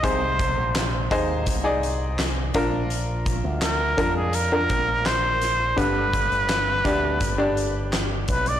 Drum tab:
HH |x-x-x-x-x-x-x-x-|x-x-x-x-x-x-x-x-|x-xxx-x-x-x-x-xx|
CP |----x-------x---|----x-------x---|----x-------x---|
SD |----o-------o-o-|----o-------o-o-|----o-------o---|
BD |o-o---o-o-----o-|--o---o---o-----|o-o---o-o-----o-|